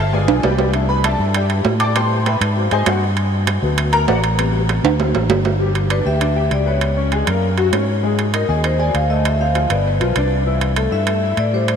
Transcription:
Already playing: fingered electric bass G1, grand piano C4 E4
0.00 grand piano A4 E5 F5 A5
0.12 grand piano G#3 B3 F4 G#4 D5 F5 G#5
0.28 fingered electric bass B1, high timbale
0.43 fingered electric bass C2, grand piano G4 B4 D5 G5, low timbale
0.58 low timbale
0.73 grand piano A3 D4 E4, high timbale
0.89 grand piano B4 B5
1.04 grand piano A4 D5 E5 A5, high timbale, low timbale
1.19 fingered electric bass G2
1.34 grand piano G4 D5 E5 G5, high timbale
1.50 high timbale
1.65 fingered electric bass A2, low timbale
1.80 grand piano D5 G5 A5 D6, high timbale
1.95 grand piano G3 B3 C4 C5 G5 A5 C6, high timbale
2.26 grand piano B4 E5 G5 B5, high timbale, low timbale
2.41 fingered electric bass G#2, high timbale
2.56 grand piano F#3 A#3 C4
2.71 fingered electric bass G#2, grand piano G#4 C5 D#5 G#5, high timbale
2.86 fingered electric bass G2, grand piano F#4 C5 D#5 F#5, high timbale, low timbale
3.17 high timbale
3.47 high timbale, low timbale
3.62 fingered electric bass D2, grand piano F#3 A3 B3
3.78 high timbale
3.93 grand piano A#4 A#5, high timbale
4.08 fingered electric bass A1, grand piano F#4 B4 D5 F#5, low timbale
4.24 high timbale
4.37 grand piano C3 G3 B3, high timbale
4.69 high timbale, low timbale
4.84 fingered electric bass D2, high timbale
4.98 grand piano E3 F#3 C4, low timbale
5.15 fingered electric bass A1, low timbale
5.29 fingered electric bass G1, low timbale
5.45 low timbale
5.60 grand piano G3 G4
5.75 high timbale
5.90 grand piano D4 D5, vibraphone B4, high timbale
6.05 fingered electric bass D2, grand piano G4 G5, vibraphone E5
6.21 grand piano D4 D5, high timbale
6.36 grand piano G4 G5
6.51 fingered electric bass C#2, vibraphone D5, high timbale
6.66 grand piano B3 B4, vibraphone C#5
6.81 high timbale
6.96 grand piano C#4 C#5
7.12 grand piano G#3 G#4, high timbale
7.27 fingered electric bass F#2, grand piano A#3 A#4, high timbale
7.58 grand piano F#3 F#4, high timbale
7.72 fingered electric bass G#2, grand piano C#4 C#5, high timbale, low timbale
8.03 grand piano G#3 G#4
8.19 high timbale
8.33 grand piano D#4 D#5, vibraphone A#4, high timbale
8.49 fingered electric bass D#2, grand piano G#4 G#5, vibraphone D#5
8.64 grand piano D#4 D#5, vibraphone C5, high timbale
8.79 grand piano G#4 G#5, vibraphone D5
8.94 fingered electric bass D2, vibraphone F5, high timbale
9.10 grand piano A3 A4, vibraphone D#5
9.25 vibraphone E5, high timbale
9.41 grand piano C4 C5, vibraphone F5
9.55 grand piano F3 F4, high timbale
9.70 fingered electric bass G1, grand piano B3 B4, vibraphone D5, high timbale
9.88 vibraphone B4
10.00 fingered electric bass B1, grand piano F3 F4, high timbale
10.16 fingered electric bass C2, grand piano D4 D5, high timbale
10.46 grand piano E3 E4
10.61 high timbale
10.76 grand piano A3 A4, vibraphone A4, high timbale
10.92 fingered electric bass G2, grand piano E4 E5, vibraphone E5
11.07 grand piano A3 A4, high timbale
11.23 grand piano E4 E5
11.37 fingered electric bass A2, vibraphone D5, high timbale
11.53 grand piano G3 G4, vibraphone C5
11.68 high timbale

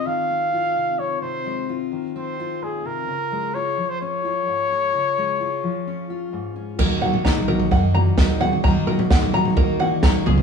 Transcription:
Already playing: steel-string acoustic guitar G#3 F4
0.05 steel-string acoustic guitar D#3, trumpet F5
0.30 steel-string acoustic guitar C4
0.53 steel-string acoustic guitar F4
0.76 steel-string acoustic guitar C3
0.99 steel-string acoustic guitar C4, trumpet C#5
1.22 steel-string acoustic guitar C3, trumpet C5
1.46 steel-string acoustic guitar G#3
1.69 steel-string acoustic guitar F4
1.92 steel-string acoustic guitar D#3
2.16 steel-string acoustic guitar C4, trumpet C5
2.40 steel-string acoustic guitar F4
2.62 steel-string acoustic guitar A#2, trumpet G#4
2.85 steel-string acoustic guitar C3, trumpet A#4
3.08 steel-string acoustic guitar C#3
3.32 steel-string acoustic guitar G#3
3.55 steel-string acoustic guitar F4, trumpet C#5
3.77 steel-string acoustic guitar F3
3.89 trumpet C5
4.01 steel-string acoustic guitar C#4, trumpet C#5
4.25 steel-string acoustic guitar F4
4.47 steel-string acoustic guitar G#2
4.72 steel-string acoustic guitar C#4
4.94 steel-string acoustic guitar C#3
5.18 steel-string acoustic guitar G#3
5.40 steel-string acoustic guitar F4
5.63 steel-string acoustic guitar F3
5.87 steel-string acoustic guitar C#4
6.10 steel-string acoustic guitar F4
6.33 steel-string acoustic guitar G#2
6.56 steel-string acoustic guitar C#4
6.79 upright bass D#2, steel-string acoustic guitar D#3 A#3 D#4 F#4, five-string banjo A#4, kick, floor tom, crash
7.02 steel-string acoustic guitar A#3 D#4 F#4, five-string banjo F#5, floor tom
7.14 floor tom
7.24 upright bass C2, steel-string acoustic guitar D#3 A#3 D#4 F#4, five-string banjo A#5, kick, snare
7.37 floor tom
7.48 steel-string acoustic guitar F#4, five-string banjo A#4, floor tom, mid tom
7.60 floor tom
7.71 upright bass F#2, steel-string acoustic guitar D#3 A#3 D#4 F#4, five-string banjo F#5, kick, floor tom
7.94 steel-string acoustic guitar A#2 A#3 D#4 F#4, five-string banjo A#5, mid tom
8.17 upright bass D#2, steel-string acoustic guitar D#3 A#3 D#4 F#4, five-string banjo A#4, kick, snare, floor tom
8.40 steel-string acoustic guitar A#3 D#4 F#4 G#4, five-string banjo F#5, floor tom, mid tom
8.53 mid tom
8.64 upright bass F#2, steel-string acoustic guitar D#3 A#3 D#4 F#4, five-string banjo A#5, kick, floor tom
8.87 steel-string acoustic guitar A#3 D#4 F#4, five-string banjo A#4, floor tom
8.99 floor tom
9.10 upright bass D#2, steel-string acoustic guitar D#3 A#3 D#4 F#4, five-string banjo F#5, kick, snare
9.22 floor tom
9.34 steel-string acoustic guitar F#4, five-string banjo A#5, floor tom, mid tom
9.45 floor tom
9.57 upright bass D#2, steel-string acoustic guitar D#3 A#3 D#4 F#4, five-string banjo A#4, kick, floor tom
9.80 steel-string acoustic guitar A#2 A#3 D#4 F#4, five-string banjo F#5, mid tom
10.03 upright bass D#3, steel-string acoustic guitar D#3 A#3 D#4 F#4, five-string banjo A#5, kick, snare, floor tom
10.26 upright bass C#2, steel-string acoustic guitar C#3 G#3 C#4 F4, five-string banjo G#4, floor tom, mid tom
10.38 floor tom, mid tom

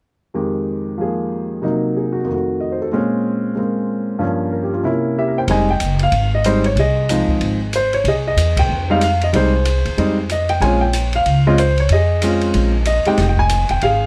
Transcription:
0.34 grand piano F2 D#3 G#3 G4
0.98 grand piano F3 A#3 G#4
1.62 grand piano C3 F#3 A#3 D#4
1.97 grand piano G#4
2.13 grand piano F#4
2.23 grand piano F2 D#3
2.31 grand piano A3 F#4
2.60 grand piano D#5
2.72 grand piano C5
2.82 grand piano A4
2.92 grand piano A#2 G#3 C4 C#4
3.55 grand piano G#3 A#3 C4
4.19 grand piano G2 F3 A#3 C#4
4.52 grand piano A#4
4.63 grand piano G4
4.74 grand piano F4
4.83 grand piano C3 A#3 C#4 E4
5.18 grand piano G4 E5
5.27 grand piano A#4
5.38 grand piano C5 G5
5.48 upright bass F1, grand piano G3 G#3 C4 D#4 D#5 G#5, ride
5.70 grand piano G5
5.80 upright bass F#1, hi-hat pedal, ride
5.99 grand piano F5, ride
6.12 upright bass G#1, ride
6.35 grand piano D#5
6.44 grand piano G3 G#3 C4 D#4 C5, hi-hat pedal, ride
6.64 grand piano C#5, ride
6.75 upright bass C2, grand piano G#4, ride
6.80 grand piano D#5
7.09 grand piano F3 G#3 C4 D#4, hi-hat pedal, ride
7.28 muted upright bass stroke, kick
7.40 upright bass G#1, ride
7.73 grand piano C5, hi-hat pedal, ride
7.93 grand piano C#5, ride
8.04 upright bass C2, grand piano G#4, ride
8.08 grand piano D#5
8.28 grand piano D#5
8.36 upright bass E2, hi-hat pedal, ride
8.57 grand piano G5, kick, ride
8.69 upright bass F2
8.90 grand piano G3 G#3 C4 D#4 F5
9.01 grand piano F5, hi-hat pedal, ride
9.21 grand piano D#5, ride
9.33 upright bass C2, grand piano G3 G#3 C4 D#4 G#4 C5, ride
9.65 hi-hat pedal, ride
9.85 upright bass E2, ride
9.97 upright bass F2, grand piano G3 G#3 C4 D#4, ride
10.29 grand piano D#5, hi-hat pedal, ride
10.49 grand piano G5, ride
10.61 upright bass A#1, grand piano G#3 C4 C#4 F4 C#5 G#5, ride
10.81 grand piano G5
10.93 hi-hat pedal, ride
11.13 grand piano F5, ride
11.26 upright bass C#2, ride
11.47 grand piano G#3 C4 C#4 F4 D#5
11.58 grand piano C5, hi-hat pedal, ride
11.78 grand piano C#5, ride
11.89 upright bass F2, grand piano D#5, ride
11.94 grand piano G#4
12.22 grand piano G#3 C4 C#4 F4, hi-hat pedal, ride
12.41 ride
12.54 upright bass A#1, ride
12.85 grand piano D#5, hi-hat pedal, ride
13.05 grand piano G#3 C4 D#4 G4 D#5 G5, muted upright bass stroke, ride
13.18 upright bass F1, snare, ride
13.29 grand piano G5
13.37 grand piano G#5, kick
13.49 hi-hat pedal, ride
13.69 upright bass E1, grand piano G5, ride
13.81 upright bass G#1, grand piano G#4 F5, ride

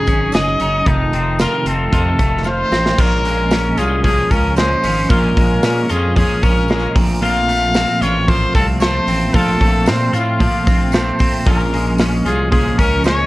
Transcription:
Already playing: clean electric guitar G#2 D#4 G#4, trumpet G#4
0.06 fm bass G#1, clean electric guitar F#3 C#4 D#4, kick, closed hi-hat, tambourine
0.32 fm bass F#1, clean electric guitar G#4, trumpet D#5, snare, closed hi-hat, tambourine
0.60 fm bass F#1, clean electric guitar F#3 C#4 D#4, closed hi-hat, tambourine
0.86 fm bass F1, clean electric guitar F2 C3 D#3 A3 D#4, trumpet D#4, kick, closed hi-hat, tambourine
1.13 fm bass F1, clean electric guitar D#3 A3 C4 D#4, closed hi-hat, tambourine
1.39 clean electric guitar C3 D#3 A3 D#4 F4, trumpet A#4, snare, closed hi-hat, tambourine
1.65 fm bass F1, clean electric guitar D#3 A3 C4 D#4, trumpet A4, closed hi-hat, tambourine
1.92 clean electric guitar F2 C3 D#3 A3 D#4 F4, fm bass F2, kick, closed hi-hat, tambourine
2.19 fm bass F1, clean electric guitar D#3 A3 D#4, kick, closed hi-hat, tambourine
2.44 clean electric guitar F4, trumpet C5, snare, tambourine
2.72 fm bass A1, clean electric guitar C4, snare, tambourine
2.86 snare
2.98 fm bass A#1, clean electric guitar A#2 F3 G#3 C#4 F4, trumpet A#4, kick, crash, tambourine
3.25 clean electric guitar G#3, hi-hat pedal, open hi-hat, tambourine
3.51 clean electric guitar C#4, snare, hi-hat pedal, open hi-hat, tambourine
3.77 fm bass C2, clean electric guitar F3 G#3 C#4 F4, trumpet G#4, hi-hat pedal, open hi-hat, tambourine
4.03 clean electric guitar A#2 F3 G#3 C#4, trumpet G#4, kick, hi-hat pedal, open hi-hat
4.31 fm bass C#2, clean electric guitar F3 G#3 C#4, trumpet A#4, kick, hi-hat pedal, open hi-hat, tambourine
4.56 clean electric guitar A#2 F3 G#3 C#4, trumpet C5, snare, hi-hat pedal, open hi-hat, tambourine
4.83 fm bass G#1, clean electric guitar F3 G#3 C#4, hi-hat pedal, open hi-hat, tambourine
5.09 fm bass A#1, clean electric guitar A#2 F3 G#3 C#4 F4, trumpet A#4, kick, hi-hat pedal, open hi-hat, tambourine
5.37 fm bass A#1, clean electric guitar G#3, kick, hi-hat pedal, open hi-hat
5.63 fm bass A#2, clean electric guitar C#4, snare, hi-hat pedal, open hi-hat, tambourine
5.89 fm bass F2, clean electric guitar F3 G#3 C#4 F4, trumpet G#4, hi-hat pedal, open hi-hat, tambourine
6.16 clean electric guitar A#2 F3 G#3 C#4, trumpet G#4, kick, hi-hat pedal, open hi-hat, tambourine
6.43 fm bass A#1, clean electric guitar F3 G#3 C#4, trumpet A#4, kick, hi-hat pedal, open hi-hat, tambourine
6.68 clean electric guitar A#2 F3 G#3 C#4, snare, hi-hat pedal, open hi-hat, tambourine
6.95 fm bass A#1, clean electric guitar A#2 F3 A3 C4, kick, hi-hat pedal, open hi-hat, tambourine
7.21 clean electric guitar A#2 F3 A3 C4 F4, trumpet F5, hi-hat pedal, open hi-hat, tambourine
7.48 clean electric guitar A3, hi-hat pedal, open hi-hat
7.74 clean electric guitar C4, snare, hi-hat pedal, open hi-hat, tambourine
8.01 fm bass A1, clean electric guitar F3 A3 C4 F4, trumpet C#5, hi-hat pedal, open hi-hat, tambourine
8.28 clean electric guitar A#2 F3 A3 C4, trumpet C5, kick, hi-hat pedal, open hi-hat
8.54 fm bass C2, clean electric guitar F3 A3 C4, trumpet A4, kick, hi-hat pedal, open hi-hat, tambourine
8.80 clean electric guitar A#2 F3 A3, trumpet C5, snare, hi-hat pedal, open hi-hat, tambourine
8.84 clean electric guitar C4
9.07 fm bass A1, clean electric guitar C4, hi-hat pedal, open hi-hat, tambourine
9.34 fm bass A#1, clean electric guitar A#2 F3 A3 C4 F4, trumpet A4, kick, hi-hat pedal, open hi-hat, tambourine
9.61 fm bass A#1, clean electric guitar A3, kick, hi-hat pedal, open hi-hat
9.86 fm bass A#2, clean electric guitar C4, trumpet C5, snare, hi-hat pedal, open hi-hat, tambourine
10.13 fm bass A2, clean electric guitar F3 A3 C4 F4, trumpet F4, hi-hat pedal, open hi-hat, tambourine
10.39 clean electric guitar A#2 F3 A3 C4, kick, hi-hat pedal, open hi-hat, tambourine
10.67 fm bass A#1, clean electric guitar F3 A3 C4, kick, hi-hat pedal, open hi-hat, tambourine
10.92 clean electric guitar A#2 F3 A3 C4, trumpet C5, snare, hi-hat pedal, open hi-hat, tambourine
11.19 clean electric guitar C4, kick, hi-hat pedal, open hi-hat, tambourine
11.45 fm bass A#1, clean electric guitar A#2 F3 G#3 C#4 F4, trumpet A#4, kick, tambourine
11.73 clean electric guitar G#3, hi-hat pedal, open hi-hat
11.98 clean electric guitar C#4, snare, hi-hat pedal, open hi-hat, tambourine
12.25 fm bass C2, clean electric guitar F3 G#3 C#4 F4, trumpet G#4, hi-hat pedal, open hi-hat, tambourine
12.51 clean electric guitar A#2 F3 G#3 C#4, trumpet G#4, kick, hi-hat pedal, open hi-hat, tambourine
12.78 fm bass C#2, clean electric guitar F3 G#3 C#4, trumpet A#4, kick, hi-hat pedal, open hi-hat, tambourine
13.04 clean electric guitar A#2 F3 G#3 C#4, trumpet C#5, snare, hi-hat pedal, open hi-hat, tambourine

